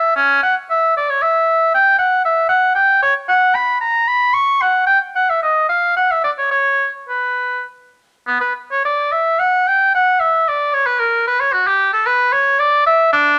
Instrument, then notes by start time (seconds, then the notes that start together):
oboe
Already playing: E5
0.16 C#4
0.43 F#5
0.70 E5
0.97 D5
1.09 C#5
1.22 E5
1.74 G5
1.98 F#5
2.25 E5
2.49 F#5
2.75 G5
3.03 C#5
3.29 F#5
3.55 B5
3.81 A#5
4.08 B5
4.34 C#6
4.62 F#5
4.87 G5
5.16 F#5
5.30 E5
5.43 D#5
5.69 F5
5.97 F#5
6.12 E5
6.24 D5
6.39 C#5
6.51 C#5
7.09 B4
8.27 B3
8.41 B4
8.72 C#5
8.85 D5
9.12 E5
9.39 F#5
9.68 G5
9.95 F#5
10.20 E5
10.48 D5
10.73 C#5
10.86 B4
10.99 A#4
11.27 B4
11.40 C#5
11.53 F#4
11.67 G4
11.93 A4
12.06 B4
12.33 C#5
12.59 D5
12.86 E5
13.13 D4